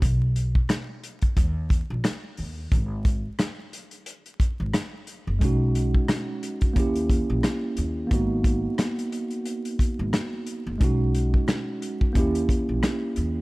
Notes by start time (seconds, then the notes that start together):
0.02 B1, kick, closed hi-hat
0.36 closed hi-hat
0.55 kick
0.69 cross-stick, snare, closed hi-hat
1.04 closed hi-hat
1.22 kick, closed hi-hat
1.37 D#2, kick, closed hi-hat
1.70 kick, closed hi-hat
1.90 A#1
2.04 cross-stick, snare, closed hi-hat
2.37 D#2, open hi-hat
2.72 G#1, kick, closed hi-hat
3.05 kick, closed hi-hat
3.39 cross-stick, snare, closed hi-hat
3.73 closed hi-hat
3.91 closed hi-hat
4.06 closed hi-hat
4.26 closed hi-hat
4.40 kick, closed hi-hat
4.60 G#1
4.74 cross-stick, snare, closed hi-hat
5.07 closed hi-hat
5.27 F#1
5.39 B1 G#3 C#4, kick, closed hi-hat
5.43 D#4 F#4
5.75 closed hi-hat
5.95 kick
6.08 cross-stick, snare, closed hi-hat
6.43 closed hi-hat
6.61 kick, closed hi-hat
6.73 D#2 A#3 C#4, kick, closed hi-hat
6.77 E4 G4
6.96 closed hi-hat
7.10 kick, closed hi-hat
7.30 A#1
7.43 cross-stick, snare, closed hi-hat
7.77 D#2, closed hi-hat
8.07 A#3 B3, kick, closed hi-hat
8.11 G#1 D#4 F#4
8.44 kick, closed hi-hat
8.78 cross-stick, snare, closed hi-hat
8.99 closed hi-hat
9.12 closed hi-hat
9.31 closed hi-hat
9.46 closed hi-hat
9.65 closed hi-hat
9.79 kick, closed hi-hat
9.99 G#1
10.13 cross-stick, snare, closed hi-hat
10.47 closed hi-hat
10.67 F#1
10.78 B1 G#3 C#4 D#4, kick, closed hi-hat
10.84 F#4
11.15 closed hi-hat
11.34 kick
11.48 cross-stick, snare, closed hi-hat
11.82 closed hi-hat
12.01 kick
12.13 D#2 A#3 C#4, kick, closed hi-hat
12.17 E4 G4
12.35 closed hi-hat
12.49 kick, closed hi-hat
12.69 A#1
12.83 cross-stick, snare, closed hi-hat
13.16 D#2, closed hi-hat